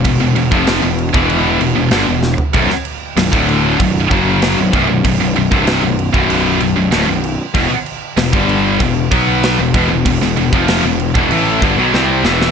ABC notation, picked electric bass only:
X:1
M:4/4
L:1/16
Q:1/4=96
K:Em
V:1 name="Picked electric bass" clef=bass
E,,, E,,, E,,, ^E,,,2 =E,,,2 E,,,3 E,,, E,,, G,,, E,,,2 z | B,,,, z3 B,,,, D,,,3 B,,,,2 F,,,3 B,,,, B,,,, B,,,, | B,,,, B,,,, B,,,, C,,,2 B,,,,2 B,,,,3 B,,,, B,,,, D,,, B,,,,2 z | E,,, z3 E,,, G,,,3 E,,,2 B,,,3 E,,, E,,, E,,, |
E,,, E,,, E,,, ^E,,,2 =E,,,2 E,,, A,,,2 G,,, B,,, C,,2 E,,,2 |]